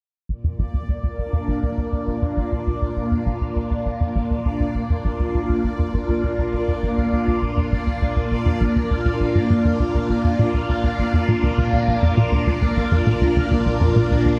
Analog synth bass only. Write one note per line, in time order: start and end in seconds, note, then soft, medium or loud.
0.29 0.34 A#1 medium
0.44 0.55 F2 medium
0.59 0.66 A#1 medium
0.74 0.81 D2 medium
0.89 0.93 D2 medium
1.03 1.08 D2 medium
1.18 1.23 A#1 medium
1.33 1.44 F2 medium
1.48 1.55 A#1 medium
1.63 1.70 D2 medium
1.78 1.82 D2 medium
1.93 1.97 D2 medium
2.07 2.12 A#1 medium
2.22 2.33 F2 medium
2.37 2.44 A#1 medium
2.52 2.59 D2 medium
2.67 2.71 D2 medium
2.82 2.86 D2 medium
2.97 3.01 A#1 medium
3.12 3.22 F2 medium
3.26 3.33 A#1 medium
3.41 3.48 D2 medium
3.56 3.60 D2 medium
3.71 3.75 D2 medium
3.86 3.90 A#1 medium
4.01 4.11 F2 medium
4.16 4.23 A#1 medium
4.31 4.38 D2 medium
4.45 4.50 D2 medium
4.60 4.64 D2 medium
4.75 4.79 A#1 medium
4.90 5.01 F2 medium
5.05 5.12 A#1 medium
5.20 5.27 D2 medium
5.34 5.39 D2 medium
5.49 5.54 D2 medium
5.64 5.68 A#1 medium
5.79 5.90 F2 medium
5.94 6.01 A#1 medium
6.09 6.16 D2 medium
6.24 6.28 D2 medium
6.38 6.43 D2 medium
6.53 6.58 A#1 medium
6.68 6.79 F2 medium
6.83 6.90 A#1 medium
6.98 7.05 D2 medium
7.13 7.17 D2 medium
7.28 7.32 D2 medium
7.42 7.47 A#1 medium
7.57 7.68 F2 medium
7.72 7.79 A#1 medium
7.87 7.94 D2 medium
8.02 8.06 D2 medium
8.16 8.21 D2 medium
8.31 8.36 A#1 medium
8.46 8.57 F2 medium
8.61 8.68 A#1 medium
8.76 8.83 D2 medium
8.91 8.95 D2 medium
9.06 9.10 D2 medium
9.20 9.25 A#1 medium
9.35 9.46 G#2 medium
9.50 9.54 G#2 medium
9.65 9.76 F2 medium
9.80 9.84 D2 medium
9.95 9.99 D2 medium
10.10 10.14 A#1 medium
10.24 10.35 F2 medium
10.39 10.46 A#2 medium
10.54 10.61 D2 medium
10.69 10.73 D2 medium
10.84 10.88 D2 medium
10.99 11.03 A#1 medium
11.14 11.24 F2 medium
11.28 11.36 A#2 medium
11.43 11.50 D2 medium
11.58 11.62 D2 medium
11.73 11.77 D2 medium
11.88 11.92 A#1 medium
12.02 12.13 F2 medium
12.17 12.25 A#2 medium
12.32 12.39 D2 medium
12.47 12.51 D2 medium
12.62 12.66 D2 medium
12.77 12.81 A#1 medium
12.92 13.02 F2 medium
13.07 13.14 A#2 medium
13.21 13.28 D2 medium
13.36 13.41 D2 medium
13.51 13.55 D2 medium
13.66 13.70 A#1 medium
13.81 13.92 F2 medium
13.96 14.03 A#2 medium
14.11 14.18 D2 medium
14.26 14.30 D2 medium